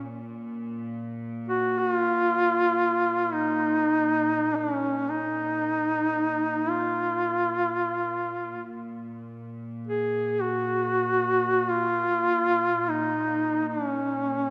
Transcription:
Already playing: A#2 C#4
1.48 F#4
1.79 F#4
1.92 F4
3.33 D#4
4.55 D4
4.74 C#4
5.09 D#4
6.70 F4
8.64 A#2
9.88 G#4
10.41 F#4
11.70 F4
12.90 D#4
13.68 D4
13.86 C#4

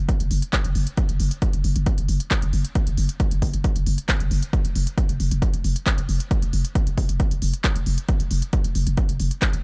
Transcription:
0.09 kick, closed hi-hat
0.20 F#1, closed hi-hat
0.31 F#1, open hi-hat
0.42 closed hi-hat
0.53 kick, clap, closed hi-hat
0.65 F#1, closed hi-hat
0.75 F#1, open hi-hat
0.87 closed hi-hat
0.97 kick, closed hi-hat
1.09 F#1, closed hi-hat
1.20 F#1, open hi-hat
1.31 closed hi-hat
1.42 kick, closed hi-hat
1.53 F#1, closed hi-hat
1.64 F#1, open hi-hat
1.76 F#1, closed hi-hat
1.86 kick, closed hi-hat
1.98 F#1, closed hi-hat
2.09 F#1, open hi-hat
2.20 closed hi-hat
2.31 kick, clap, closed hi-hat
2.42 F#1, closed hi-hat
2.53 F#1, open hi-hat
2.65 closed hi-hat
2.75 kick, closed hi-hat
2.87 F#1, closed hi-hat
2.97 F#1, open hi-hat
3.09 closed hi-hat
3.20 kick, closed hi-hat
3.31 F#1, closed hi-hat
3.42 F#1, kick, open hi-hat
3.54 F#1, closed hi-hat
3.64 kick, closed hi-hat
3.76 F#1, closed hi-hat
3.86 F#1, open hi-hat
3.98 closed hi-hat
4.09 kick, clap, closed hi-hat
4.20 F#1, closed hi-hat
4.31 F#1, open hi-hat
4.43 closed hi-hat
4.53 kick, closed hi-hat
4.65 F1, closed hi-hat
4.75 F1, open hi-hat
4.87 closed hi-hat
4.98 kick, closed hi-hat
5.09 F1, closed hi-hat
5.20 F1, open hi-hat
5.31 F1, closed hi-hat
5.42 kick, closed hi-hat
5.54 F1, closed hi-hat
5.64 F1, open hi-hat
5.76 closed hi-hat
5.87 kick, clap, closed hi-hat
5.98 F1, closed hi-hat
6.09 F1, open hi-hat
6.20 closed hi-hat
6.31 kick, closed hi-hat
6.42 F1, closed hi-hat
6.53 F1, open hi-hat
6.65 closed hi-hat
6.75 kick, closed hi-hat
6.87 F1, closed hi-hat
6.98 F1, kick, open hi-hat
7.09 F1, closed hi-hat
7.20 kick, closed hi-hat
7.31 F1, closed hi-hat
7.42 F1, open hi-hat
7.54 closed hi-hat
7.64 kick, clap, closed hi-hat
7.76 F1, closed hi-hat
7.86 F1, open hi-hat
7.98 closed hi-hat
8.09 kick, closed hi-hat
8.20 F1, closed hi-hat
8.31 F1, open hi-hat
8.42 closed hi-hat
8.53 kick, closed hi-hat
8.64 F1, closed hi-hat
8.75 F1, open hi-hat
8.87 F1, closed hi-hat
8.97 kick, closed hi-hat
9.09 F1, closed hi-hat
9.20 F1, open hi-hat
9.31 closed hi-hat
9.42 kick, clap, closed hi-hat
9.53 F1, closed hi-hat

